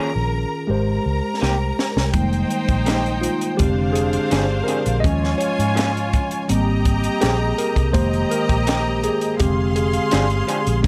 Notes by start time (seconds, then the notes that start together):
Already playing: D#3 C#4 F4 G#4 A#4 A#5
0.16 A#1
0.67 G#1 G#3 G4 A#4 C5 A#5
1.06 C#2
1.41 C2 D#3 A#3 C4 G4, snare
1.79 snare
1.97 C2, snare
2.13 F1 D#3 G3 G#3 A#3 D#4 C5 G5, kick, closed hi-hat
2.33 closed hi-hat
2.50 closed hi-hat
2.68 A#1, kick, closed hi-hat
2.86 G#3 A#3 D#4 G4, snare, closed hi-hat
3.06 closed hi-hat
3.21 F4, closed hi-hat
3.41 closed hi-hat
3.57 F1 D3 G#3 C4 D4 G4 C5 F5, kick, closed hi-hat
3.93 G#4, closed hi-hat
4.13 closed hi-hat
4.31 G1 F3 C4 D4 G#4, snare, closed hi-hat
4.64 F3 C4 A#4
4.68 D4 G#4, closed hi-hat
4.86 A#1, closed hi-hat
5.00 F3 G#3 C#4 D#5
5.04 D#2 F4 C#5 G#5, kick, closed hi-hat
5.24 snare
5.38 C#5, closed hi-hat
5.59 G#2, closed hi-hat
5.75 F3 A#3 C#4 G#4, closed hi-hat
5.79 snare
5.97 closed hi-hat
6.13 kick, closed hi-hat
6.31 closed hi-hat
6.48 G#1 G3 A#3 C4 G4 D#5 A#5, closed hi-hat
6.85 kick, closed hi-hat
7.04 closed hi-hat
7.21 A#1 D#3 A#3 C4 G4 G#4, snare, closed hi-hat
7.58 A#4, closed hi-hat
7.76 C2, kick, closed hi-hat
7.93 F1 D#3 G#3 A#3 G4 C5 D#5 A#5, kick, closed hi-hat
8.13 closed hi-hat
8.31 A#4, closed hi-hat
8.49 A#1, kick, closed hi-hat
8.67 G#3 A#3 D#4 G4, snare, closed hi-hat
9.04 G#4, closed hi-hat
9.21 closed hi-hat
9.38 F1 D3 G#3 C4 G4 G#4 F5 C6, kick, closed hi-hat
9.76 G#4, closed hi-hat
9.93 closed hi-hat
10.11 G1 F3 C4 D4 G#4, snare, closed hi-hat
10.30 closed hi-hat
10.47 F3 C4 D4 G#4, closed hi-hat
10.67 A#1, closed hi-hat
10.82 D#2 F3 G#3 C#4, kick